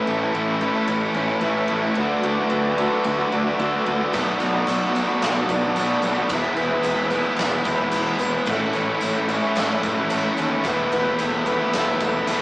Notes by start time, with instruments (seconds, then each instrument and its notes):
Already playing: overdriven electric guitar A2 E3 A3 C#4 E4, twelve-string acoustic guitar E3 E4, string machine A4 F#5 C#6
0.06 picked electric bass A1, distorted electric guitar A2, overdriven electric guitar E3 A3 C#4 E4, twelve-string acoustic guitar A3
0.20 distorted electric guitar E3 A3, overdriven electric guitar C#4 E4
0.25 overdriven electric guitar A3
0.32 picked electric bass A1, distorted electric guitar A2 E3 A3, twelve-string acoustic guitar E3
0.60 distorted electric guitar A2, overdriven electric guitar E3 A3 C#4 E4, twelve-string acoustic guitar A3
0.64 overdriven electric guitar A2
0.73 distorted electric guitar E3 A3, overdriven electric guitar C#4 E4
0.78 overdriven electric guitar A3
0.87 picked electric bass A1, overdriven electric guitar A2 E3 A3 C#4, twelve-string acoustic guitar F#4
0.91 overdriven electric guitar E4
1.01 overdriven electric guitar A3 C#4 E4
1.14 picked electric bass A1, distorted electric guitar A2, overdriven electric guitar E3 A3 C#4 E4, twelve-string acoustic guitar C#4
1.27 distorted electric guitar E3, overdriven electric guitar A3 C#4 E4
1.40 picked electric bass A1, overdriven electric guitar A2 E3 A3 C#4 E4, twelve-string acoustic guitar E3
1.68 picked electric bass A1, distorted electric guitar A2, overdriven electric guitar E3 A3 C#4 E4, twelve-string acoustic guitar A3
1.82 distorted electric guitar E3, overdriven electric guitar A3 C#4 E4
1.95 picked electric bass D2, overdriven electric guitar D3 F#3 A3 D4 F#4, twelve-string acoustic guitar E3, string machine F#4 E5 D6
2.22 picked electric bass D2, overdriven electric guitar D3 A3 D4 F#4, twelve-string acoustic guitar A3
2.37 overdriven electric guitar A3 D4 F#4
2.50 picked electric bass D2, distorted electric guitar D3 A3 D4, twelve-string acoustic guitar E3
2.77 overdriven electric guitar D3 F#3 A3 D4, twelve-string acoustic guitar A3
2.81 overdriven electric guitar D4 F#4
2.92 overdriven electric guitar A3 D4 F#4
3.04 picked electric bass D2, overdriven electric guitar D3 A3 D4 F#4, twelve-string acoustic guitar F#4
3.18 overdriven electric guitar A3 D4 F#4
3.30 picked electric bass D2, overdriven electric guitar D3 A3 D4 F#4, twelve-string acoustic guitar D4
3.44 overdriven electric guitar A3 D4 F#4
3.57 picked electric bass D2, overdriven electric guitar D3 F#3 A3 D4 F#4, twelve-string acoustic guitar E3
3.85 picked electric bass D2, overdriven electric guitar D3 A3 D4, twelve-string acoustic guitar A3
3.89 overdriven electric guitar F#4
3.99 overdriven electric guitar A3 D4 F#4
4.12 picked electric bass B1, overdriven electric guitar B2 F#3 B3 D4 F#4, twelve-string acoustic guitar A3, string machine D5 B5, kick, tambourine, crash
4.16 string machine A4
4.39 picked electric bass B1, distorted electric guitar B2, overdriven electric guitar F#3 B3 D4 F#4, twelve-string acoustic guitar A3, tambourine, crash
4.53 distorted electric guitar F#3, overdriven electric guitar B3 D4 F#4
4.67 picked electric bass B1, distorted electric guitar B2 F#3 B3, twelve-string acoustic guitar A3, tambourine, crash
4.94 distorted electric guitar B2, overdriven electric guitar B2 F#3 B3 D4 F#4, twelve-string acoustic guitar A3, tambourine, crash
5.08 distorted electric guitar F#3, overdriven electric guitar B3 D4 F#4
5.22 picked electric bass B1, overdriven electric guitar B2 F#3 B3 D4, twelve-string acoustic guitar F#4, snare, crash
5.26 overdriven electric guitar F#4
5.36 overdriven electric guitar B3 D4 F#4
5.48 picked electric bass B1, distorted electric guitar B2, overdriven electric guitar F#3 B3 D4, twelve-string acoustic guitar D4, kick, tambourine, crash
5.53 overdriven electric guitar F#4
5.63 distorted electric guitar F#3, overdriven electric guitar B3 D4 F#4
5.75 picked electric bass B1, overdriven electric guitar B2 F#3 B3 D4 F#4, twelve-string acoustic guitar A3, tambourine, crash
6.02 picked electric bass B1, distorted electric guitar B2, overdriven electric guitar F#3 B3 D4, twelve-string acoustic guitar A3, tambourine, crash
6.06 overdriven electric guitar F#4
6.16 distorted electric guitar F#3 B3, overdriven electric guitar D4 F#4
6.21 overdriven electric guitar B3
6.29 picked electric bass E1, overdriven electric guitar E2 B2 E3 G#3, twelve-string acoustic guitar B3, string machine G#4 E5, kick, tambourine, crash
6.34 overdriven electric guitar B3 E4
6.56 picked electric bass E1, distorted electric guitar E2 B2, overdriven electric guitar E3, twelve-string acoustic guitar B3, tambourine, crash
6.60 overdriven electric guitar G#3 B3 E4
6.71 distorted electric guitar B2, overdriven electric guitar E3 G#3 B3 E4
6.83 picked electric bass E1, distorted electric guitar E2 B2 E3, twelve-string acoustic guitar B3, tambourine, crash
7.10 distorted electric guitar E2 B2, overdriven electric guitar E3 G#3 E4, twelve-string acoustic guitar B3, tambourine, crash
7.15 overdriven electric guitar B3 E4
7.25 distorted electric guitar B2 E3, overdriven electric guitar G#3 B3 E4
7.30 overdriven electric guitar E3
7.37 picked electric bass E1, overdriven electric guitar E2, twelve-string acoustic guitar G#4, snare, crash
7.42 overdriven electric guitar B2 E3 G#3 B3 E4
7.54 overdriven electric guitar E3 G#3 B3 E4
7.64 picked electric bass E1, distorted electric guitar E2 B2, overdriven electric guitar E3, twelve-string acoustic guitar E4, kick, tambourine, crash
7.70 overdriven electric guitar G#3 B3 E4
7.79 distorted electric guitar B2 E3, overdriven electric guitar G#3 B3 E4
7.83 overdriven electric guitar E3
7.91 picked electric bass E1, overdriven electric guitar E2 B2 E3, twelve-string acoustic guitar B3, tambourine, crash
7.96 overdriven electric guitar G#3 B3 E4
8.19 picked electric bass E1, distorted electric guitar E2 B2, overdriven electric guitar E3, twelve-string acoustic guitar B3, tambourine, crash
8.23 overdriven electric guitar G#3 B3 E4
8.33 distorted electric guitar B2 E3, overdriven electric guitar G#3 B3 E4
8.37 overdriven electric guitar E3
8.46 picked electric bass A1, overdriven electric guitar A2, twelve-string acoustic guitar F#3, string machine A4 F#5 C#6, kick, tambourine, crash
8.50 overdriven electric guitar E3 A3 C#4 E4
8.73 picked electric bass A1, distorted electric guitar A2, overdriven electric guitar E3 A3 C#4, twelve-string acoustic guitar C#4, tambourine, crash
8.78 overdriven electric guitar E4
8.88 distorted electric guitar E3 A3, overdriven electric guitar C#4 E4
8.92 overdriven electric guitar A3
9.01 picked electric bass A1, distorted electric guitar A2 E3 A3, twelve-string acoustic guitar F#3, tambourine, crash
9.28 distorted electric guitar A2, overdriven electric guitar E3 A3 C#4 E4, twelve-string acoustic guitar C#4, tambourine, crash
9.32 overdriven electric guitar A2
9.42 distorted electric guitar E3, overdriven electric guitar A3 C#4 E4
9.55 picked electric bass A1, overdriven electric guitar A2 E3 A3 C#4 E4, twelve-string acoustic guitar A4, snare, crash
9.70 overdriven electric guitar A3 C#4 E4
9.81 picked electric bass A1, distorted electric guitar A2, overdriven electric guitar E3 A3 C#4 E4, twelve-string acoustic guitar E4, kick, tambourine, crash
9.95 overdriven electric guitar C#4 E4
9.99 distorted electric guitar E3, overdriven electric guitar A3
10.10 picked electric bass A1, overdriven electric guitar A2 E3 A3 C#4 E4, twelve-string acoustic guitar F#3, tambourine, crash
10.37 picked electric bass D#2, distorted electric guitar A2, overdriven electric guitar E3 A3 C#4, twelve-string acoustic guitar C#4, tambourine, crash
10.41 overdriven electric guitar E4
10.52 distorted electric guitar E3, overdriven electric guitar A3 C#4 E4
10.64 picked electric bass E1, overdriven electric guitar E2 B2, twelve-string acoustic guitar B3, string machine E5 B5, kick, tambourine, crash
10.68 overdriven electric guitar E3 A3 B3 E4
10.92 picked electric bass E1, distorted electric guitar E2 B2, overdriven electric guitar E3 A3, twelve-string acoustic guitar B3, tambourine, crash
10.96 overdriven electric guitar B3 E4
11.06 distorted electric guitar B2 E3, overdriven electric guitar A3 B3 E4
11.11 overdriven electric guitar E3
11.19 picked electric bass E1, distorted electric guitar E2 B2 E3, twelve-string acoustic guitar B3, tambourine, crash
11.45 distorted electric guitar E2 B2, overdriven electric guitar E3 A3 E4, twelve-string acoustic guitar B3, tambourine, crash
11.50 overdriven electric guitar B3 E4
11.60 overdriven electric guitar E3 A3 B3 E4
11.64 distorted electric guitar B2
11.73 picked electric bass E1, overdriven electric guitar E2 B2 E3 A3, twelve-string acoustic guitar A4, snare, crash
11.78 overdriven electric guitar B3 E4
11.88 overdriven electric guitar E3 A3 B3 E4
12.00 picked electric bass E1, distorted electric guitar E2 B2, overdriven electric guitar E3 A3 B3, twelve-string acoustic guitar E4, kick, tambourine, crash
12.05 overdriven electric guitar E4
12.14 distorted electric guitar B2 E3, overdriven electric guitar A3 B3 E4
12.19 overdriven electric guitar E3
12.27 picked electric bass E1, overdriven electric guitar E2 B2 E3 A3, twelve-string acoustic guitar B3, tambourine, crash
12.32 overdriven electric guitar B3 E4